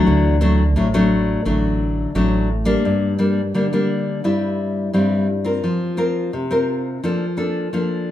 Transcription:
0.00 0.36 F#3 medium
0.00 0.36 A3 medium
0.00 0.36 D4 medium
0.07 0.76 D2 medium
0.07 0.73 D3 medium
0.41 0.62 F#3 medium
0.41 0.62 A3 medium
0.41 0.62 D4 medium
0.76 1.35 A1 medium
0.76 1.42 A2 medium
0.76 0.87 F#3 medium
0.76 0.87 A3 medium
0.76 0.87 D4 medium
0.94 1.40 F#3 medium
0.94 1.41 A3 medium
0.94 1.41 D4 medium
1.45 2.05 A1 medium
1.45 2.12 D3 medium
1.45 2.10 F#3 medium
1.45 2.10 A3 medium
1.45 2.10 D4 medium
2.15 2.74 A1 medium
2.15 2.81 A2 medium
2.15 2.48 F#3 medium
2.15 2.48 A3 medium
2.15 2.48 D4 medium
2.65 3.13 G3 medium
2.65 3.13 A#3 medium
2.65 3.13 D4 medium
2.85 3.51 G2 medium
3.19 3.40 G3 medium
3.19 3.40 A#3 medium
3.19 3.40 D4 medium
3.54 4.21 D3 medium
3.54 3.65 G3 medium
3.54 3.65 A#3 soft
3.54 3.65 D4 medium
3.73 4.19 G3 soft
3.73 4.19 A#3 medium
3.73 4.19 D4 medium
4.24 4.90 G2 medium
4.24 4.88 G3 soft
4.24 4.88 C4 soft
4.24 4.88 E4 medium
4.93 5.60 G2 medium
4.93 5.26 G3 soft
4.93 5.27 C4 medium
4.93 5.27 E4 medium
5.44 5.92 C4 medium
5.44 5.92 F4 medium
5.44 5.92 A#4 medium
5.64 6.30 F3 medium
5.97 6.30 C4 medium
5.97 6.31 F4 medium
5.97 6.31 A#4 medium
6.33 6.99 C3 medium
6.51 6.97 C4 medium
6.51 6.97 F4 medium
6.51 6.98 A#4 medium
7.04 7.69 F3 medium
7.04 7.24 A#3 soft
7.04 7.24 D4 medium
7.04 7.24 A4 medium
7.37 7.67 A#3 soft
7.37 7.67 D4 medium
7.37 7.67 A4 medium
7.73 8.11 F3 medium
7.73 8.11 A#3 soft
7.73 8.11 D4 medium
7.73 8.11 A4 soft

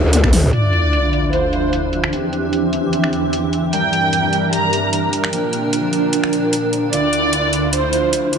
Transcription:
0.00 0.51 D2 loud
0.00 0.52 D4 medium
0.00 0.55 E5 loud
0.13 closed hi-hat medium
0.13 high tom medium
0.24 finger snap medium
0.24 kick medium
0.24 high tom medium
0.33 open hi-hat loud
0.33 mid tom medium
0.44 mid tom medium
0.53 2.11 D2 medium
0.53 2.11 D3 medium
0.53 2.77 D4 medium
0.53 2.11 E4 medium
0.53 2.11 F4 medium
0.53 1.26 D5 medium
0.53 closed hi-hat medium
0.53 sub drop medium
0.73 closed hi-hat soft
0.93 closed hi-hat medium
1.02 4.37 E5 medium
1.13 closed hi-hat soft
1.33 1.85 C5 medium
1.33 closed hi-hat medium
1.53 closed hi-hat medium
1.73 closed hi-hat medium
1.93 closed hi-hat soft
2.04 finger snap medium
2.13 3.71 E2 medium
2.13 3.71 E3 medium
2.13 3.71 C4 medium
2.13 3.71 G4 medium
2.13 closed hi-hat medium
2.33 closed hi-hat soft
2.50 4.37 C4 medium
2.50 closed hi-hat medium
2.73 closed hi-hat soft
2.93 closed hi-hat medium
3.04 finger snap soft
3.13 closed hi-hat soft
3.33 closed hi-hat medium
3.53 closed hi-hat soft
3.73 5.31 G2 medium
3.73 5.31 G3 medium
3.73 8.38 D4 medium
3.73 5.31 D4 medium
3.73 6.90 A#4 medium
3.73 4.45 G5 loud
3.73 closed hi-hat medium
3.93 closed hi-hat soft
4.07 6.93 A#4 medium
4.13 closed hi-hat medium
4.33 closed hi-hat soft
4.53 5.05 A#5 medium
4.53 closed hi-hat medium
4.73 closed hi-hat soft
4.93 closed hi-hat medium
5.13 closed hi-hat soft
5.24 finger snap medium
5.33 6.91 A#2 medium
5.33 6.91 F3 medium
5.33 6.91 D4 medium
5.33 closed hi-hat medium
5.53 closed hi-hat soft
5.73 closed hi-hat medium
5.93 closed hi-hat soft
6.13 closed hi-hat medium
6.24 finger snap medium
6.33 closed hi-hat soft
6.53 closed hi-hat medium
6.73 closed hi-hat soft
6.93 8.38 D2 medium
6.93 8.38 D3 medium
6.93 8.38 E4 medium
6.93 8.38 F4 medium
6.93 7.65 D5 loud
6.93 closed hi-hat medium
7.13 closed hi-hat soft
7.33 closed hi-hat medium
7.53 closed hi-hat soft
7.65 8.38 E5 medium
7.73 8.25 C5 medium
7.73 closed hi-hat medium
7.93 closed hi-hat soft
8.13 closed hi-hat medium
8.33 closed hi-hat soft

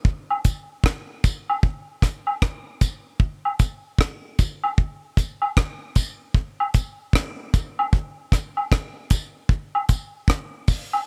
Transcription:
0.05 kick loud
0.30 high woodblock medium
0.45 kick medium
0.45 closed hi-hat medium
0.45 tambourine medium
0.84 kick loud
0.84 cross-stick loud
1.24 kick loud
1.24 closed hi-hat medium
1.24 tambourine medium
1.50 high woodblock medium
1.63 kick loud
2.02 kick medium
2.02 cross-stick medium
2.02 closed hi-hat medium
2.02 tambourine medium
2.27 high woodblock medium
2.42 kick loud
2.42 cross-stick loud
2.81 kick loud
2.81 closed hi-hat medium
2.81 tambourine medium
3.20 kick loud
3.45 high woodblock medium
3.59 kick loud
3.59 closed hi-hat medium
3.59 tambourine medium
3.99 kick loud
3.99 cross-stick loud
4.39 kick loud
4.39 closed hi-hat medium
4.39 tambourine medium
4.64 high woodblock medium
4.78 kick loud
5.17 kick loud
5.17 closed hi-hat medium
5.17 tambourine medium
5.42 high woodblock medium
5.57 kick loud
5.57 cross-stick loud
5.96 kick medium
5.96 closed hi-hat medium
5.96 tambourine medium
6.34 kick loud
6.60 high woodblock medium
6.74 kick medium
6.74 closed hi-hat medium
6.74 tambourine medium
7.13 kick loud
7.13 cross-stick loud
7.54 kick loud
7.54 closed hi-hat medium
7.54 tambourine medium
7.79 high woodblock medium
7.93 kick loud
8.32 kick loud
8.32 cross-stick medium
8.32 closed hi-hat medium
8.32 tambourine medium
8.57 high woodblock medium
8.72 kick loud
8.72 cross-stick loud
9.10 kick loud
9.10 closed hi-hat medium
9.10 tambourine medium
9.49 kick loud
9.75 high woodblock medium
9.89 kick medium
9.89 closed hi-hat medium
9.89 tambourine medium
10.28 kick loud
10.28 cross-stick loud
10.68 kick loud
10.68 open hi-hat medium
10.68 tambourine medium
10.93 high woodblock medium

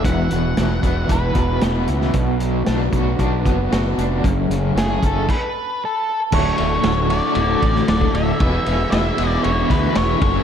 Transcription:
0.04 0.28 E1 medium
0.04 1.36 E2 medium
0.04 2.13 B3 medium
0.04 2.13 E4 soft
0.04 5.25 F#4 medium
0.04 4.20 B4 medium
0.04 1.13 F#5 loud
0.04 kick medium
0.04 closed hi-hat medium
0.31 0.55 E1 medium
0.31 1.34 B2 medium
0.31 closed hi-hat medium
0.57 0.81 E1 medium
0.57 1.08 E3 medium
0.57 snare loud
0.57 closed hi-hat medium
0.83 1.07 E1 medium
0.83 1.61 B3 medium
0.83 kick medium
0.83 closed hi-hat medium
1.09 1.33 E1 medium
1.09 1.87 E3 medium
1.09 1.59 B4 medium
1.09 kick medium
1.09 closed hi-hat medium
1.35 1.59 E1 medium
1.35 2.13 B2 medium
1.35 kick medium
1.35 closed hi-hat medium
1.61 1.86 E1 medium
1.61 2.15 B3 medium
1.61 snare loud
1.61 closed hi-hat medium
1.88 2.12 C#2 medium
1.88 2.15 E3 medium
1.88 closed hi-hat medium
2.01 snare soft
2.13 2.63 B1 medium
2.13 3.45 B2 medium
2.13 4.22 B3 medium
2.13 4.22 D4 soft
2.13 kick loud
2.13 closed hi-hat medium
2.40 3.72 F#3 medium
2.40 closed hi-hat medium
2.66 2.91 B1 medium
2.66 3.19 D4 medium
2.66 snare loud
2.66 closed hi-hat medium
2.93 3.17 B1 medium
2.93 3.71 F#4 medium
2.93 kick medium
2.93 closed hi-hat medium
3.19 3.43 B1 medium
3.19 3.98 D4 medium
3.19 kick medium
3.19 closed hi-hat medium
3.46 3.69 F#1 medium
3.46 4.25 B3 medium
3.46 kick medium
3.46 closed hi-hat medium
3.72 3.96 F#1 medium
3.72 4.24 F#4 medium
3.72 snare loud
3.72 closed hi-hat medium
3.98 4.22 F1 medium
3.98 4.24 D4 medium
3.98 closed hi-hat medium
4.24 4.48 F#1 medium
4.24 5.28 F#2 medium
4.24 5.28 A3 medium
4.24 5.27 C#4 medium
4.24 5.27 G#4 medium
4.24 kick loud
4.24 closed hi-hat medium
4.50 4.74 F#1 medium
4.50 5.29 C#3 medium
4.50 closed hi-hat medium
4.75 4.99 F#1 medium
4.75 5.28 A3 medium
4.75 5.04 G#4 medium
4.75 snare loud
4.75 closed hi-hat medium
5.02 5.26 F#1 medium
5.02 5.29 C#4 medium
5.02 5.30 A4 medium
5.02 kick medium
5.02 closed hi-hat medium
5.29 5.83 B4 medium
5.29 kick medium
5.29 crash medium
5.85 6.19 A4 medium
6.32 6.50 D1 loud
6.32 7.09 D2 medium
6.32 7.09 A2 loud
6.32 7.09 D3 loud
6.32 8.39 A3 medium
6.32 7.09 A3 loud
6.32 8.38 D4 medium
6.32 10.43 F#4 medium
6.32 7.09 F#4 loud
6.32 8.39 A4 medium
6.32 7.09 C#5 medium
6.32 kick loud
6.32 crash loud
6.58 6.77 D1 medium
6.58 ride medium
6.83 7.19 D1 medium
6.83 snare loud
6.83 ride medium
7.09 8.39 D2 medium
7.09 8.39 A2 medium
7.09 8.39 D3 medium
7.09 8.39 A3 medium
7.09 8.42 F#4 medium
7.09 8.10 D5 medium
7.09 ride medium
7.35 7.54 D1 medium
7.35 ride loud
7.62 7.80 A1 medium
7.62 kick medium
7.62 ride medium
7.75 snare soft
7.88 8.06 D1 medium
7.88 snare loud
7.88 ride loud
8.01 kick medium
8.13 8.31 D1 medium
8.13 8.90 E5 medium
8.13 ride medium
8.40 8.58 E1 loud
8.40 9.16 E2 medium
8.40 9.17 B2 medium
8.40 9.17 E3 loud
8.40 9.17 G#3 loud
8.40 10.20 B3 medium
8.40 9.17 B3 loud
8.40 10.20 E4 medium
8.40 9.16 E4 medium
8.40 10.20 G#4 medium
8.40 kick loud
8.40 ride loud
8.66 8.84 E1 medium
8.66 ride medium
8.91 9.10 E1 medium
8.91 9.40 E5 medium
8.91 snare loud
8.91 ride loud
9.17 9.36 E1 medium
9.17 10.19 E2 medium
9.17 10.20 B2 medium
9.17 10.21 E3 medium
9.17 10.20 G#3 medium
9.17 10.20 B3 medium
9.17 10.20 E4 medium
9.17 ride medium
9.44 9.62 E1 medium
9.44 9.68 C#5 medium
9.44 ride loud
9.70 9.87 D2 medium
9.70 9.97 B4 medium
9.70 kick medium
9.70 snare soft
9.70 ride medium
9.95 10.13 E1 medium
9.95 10.43 C#5 medium
9.95 snare loud
9.95 ride loud
10.20 10.39 F#1 medium
10.20 10.43 F#2 medium
10.20 10.43 C#3 medium
10.20 10.43 F#3 loud
10.20 10.43 A3 loud
10.20 10.43 A3 medium
10.20 10.43 C#4 medium
10.20 10.43 C#4 loud
10.20 10.43 F#4 loud
10.20 10.43 A4 medium
10.20 kick loud
10.20 ride medium

